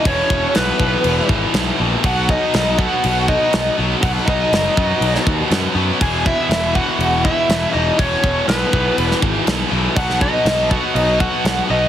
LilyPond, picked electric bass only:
\new Staff \with { instrumentName = "Picked electric bass" } { \clef bass \time 4/4 \key e \lydian \tempo 4 = 121 e,,8 e,,8 b,,8 b,,8 e,,8 gis,,8 b,,8 ais,,8 | b,,4 b,,4 b,,4 b,,8 b,,8 | b,,8 b,,8 fis,,8 fis,8 b,,8 dis,8 fis,8 fis,8 | e,,4 e,,4 e,,4 e,,8 e,,8 |
e,,8 e,,8 b,,8 b,,8 e,,8 gis,,8 b,,8 b,,8 | b,,4 b,,4 b,,4 b,,8 b,,8 | }